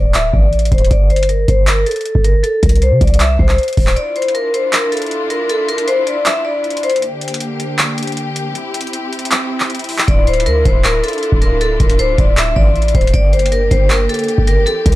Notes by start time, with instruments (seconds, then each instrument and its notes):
Already playing: 808-style bass D1, vibraphone D5
0.14 vibraphone E5, clap, closed hi-hat
0.33 808-style bass A1, vibraphone D5, kick
0.53 closed hi-hat
0.59 closed hi-hat
0.65 closed hi-hat
0.72 808-style bass D1, vibraphone C5, kick, closed hi-hat
0.78 closed hi-hat
0.85 closed hi-hat
0.90 808-style bass G1, vibraphone D5, kick, closed hi-hat
1.10 vibraphone C5, closed hi-hat
1.16 closed hi-hat
1.23 closed hi-hat
1.29 vibraphone A#4, closed hi-hat
1.48 808-style bass G1, vibraphone C5, kick, closed hi-hat
1.67 vibraphone A#4, clap, closed hi-hat
1.86 vibraphone A4, closed hi-hat
1.91 closed hi-hat
1.96 closed hi-hat
2.01 closed hi-hat
2.06 closed hi-hat
2.15 808-style bass G1, kick
2.24 vibraphone A#4, closed hi-hat
2.43 vibraphone A4, closed hi-hat
2.63 808-style bass C2, vibraphone A#4, kick, closed hi-hat
2.69 closed hi-hat
2.76 closed hi-hat
2.82 vibraphone C5, closed hi-hat
2.91 808-style bass C3
3.01 808-style bass C2, vibraphone D5, kick, closed hi-hat
3.07 closed hi-hat
3.14 closed hi-hat
3.20 vibraphone E5, clap, closed hi-hat
3.39 808-style bass C2, vibraphone C5, kick
3.49 clap
3.58 closed hi-hat
3.63 closed hi-hat
3.68 closed hi-hat
3.73 closed hi-hat
3.77 808-style bass D1, kick, open hi-hat
3.87 clap
3.96 string section D4 E4 F4, vibraphone D5, closed hi-hat
4.16 vibraphone C5, closed hi-hat
4.22 closed hi-hat
4.28 closed hi-hat
4.35 vibraphone A#4, closed hi-hat
4.54 vibraphone C5, closed hi-hat
4.73 vibraphone A#4, clap, closed hi-hat
4.92 vibraphone A4, closed hi-hat
4.97 closed hi-hat
5.02 closed hi-hat
5.06 closed hi-hat
5.11 closed hi-hat
5.30 vibraphone A#4, closed hi-hat
5.49 vibraphone A4, closed hi-hat
5.68 vibraphone A#4, closed hi-hat
5.78 closed hi-hat
5.88 vibraphone C5, closed hi-hat
6.07 vibraphone D5, closed hi-hat
6.26 vibraphone E5, clap, closed hi-hat
6.45 vibraphone D5
6.64 closed hi-hat
6.70 closed hi-hat
6.77 closed hi-hat
6.83 vibraphone C5, closed hi-hat
6.90 closed hi-hat
6.96 closed hi-hat
7.02 string section D3 A#3 G4, closed hi-hat
7.21 closed hi-hat
7.28 closed hi-hat
7.34 closed hi-hat
7.40 closed hi-hat
7.60 closed hi-hat
7.79 clap, closed hi-hat
7.98 closed hi-hat
8.03 closed hi-hat
8.07 closed hi-hat
8.12 closed hi-hat
8.17 closed hi-hat
8.36 closed hi-hat
8.55 string section C4 E4, closed hi-hat
8.74 closed hi-hat
8.81 closed hi-hat
8.87 closed hi-hat
8.93 closed hi-hat
9.13 closed hi-hat
9.19 closed hi-hat
9.25 closed hi-hat
9.31 clap, closed hi-hat
9.60 clap
9.70 closed hi-hat
9.75 closed hi-hat
9.79 closed hi-hat
9.84 closed hi-hat
9.89 open hi-hat
9.98 clap
10.08 808-style bass D1, string section D4 F4, vibraphone D5, kick, closed hi-hat
10.27 vibraphone C5, closed hi-hat
10.34 closed hi-hat
10.40 closed hi-hat
10.46 808-style bass D2, vibraphone A#4, closed hi-hat
10.65 808-style bass D1, vibraphone C5, kick, closed hi-hat
10.84 vibraphone A#4, clap, closed hi-hat
11.04 vibraphone A4, closed hi-hat
11.08 closed hi-hat
11.13 closed hi-hat
11.18 closed hi-hat
11.23 closed hi-hat
11.32 808-style bass D1, kick
11.42 vibraphone A#4, closed hi-hat
11.61 vibraphone A4, closed hi-hat
11.80 808-style bass D1, vibraphone A#4, kick, closed hi-hat
11.90 closed hi-hat
11.99 vibraphone C5, closed hi-hat
12.18 808-style bass D1, vibraphone D5, kick, closed hi-hat
12.37 vibraphone E5, clap, closed hi-hat
12.56 808-style bass A1, vibraphone D5, kick
12.76 closed hi-hat
12.82 closed hi-hat
12.88 closed hi-hat
12.95 808-style bass D1, vibraphone C5, kick, closed hi-hat
13.01 closed hi-hat
13.07 closed hi-hat
13.14 808-style bass G1, string section D3 A#3 G4, vibraphone D5, kick, closed hi-hat
13.33 vibraphone C5, closed hi-hat
13.39 closed hi-hat
13.46 closed hi-hat
13.52 vibraphone A#4, closed hi-hat
13.71 808-style bass G1, vibraphone C5, kick, closed hi-hat
13.90 vibraphone A#4, clap, closed hi-hat
14.09 vibraphone A4, closed hi-hat
14.14 closed hi-hat
14.19 closed hi-hat
14.24 closed hi-hat
14.28 closed hi-hat
14.38 808-style bass G1, kick
14.47 vibraphone A#4, closed hi-hat
14.66 string section E3 C4, vibraphone A4, closed hi-hat
14.86 808-style bass C2, vibraphone A#4, kick, closed hi-hat
14.92 closed hi-hat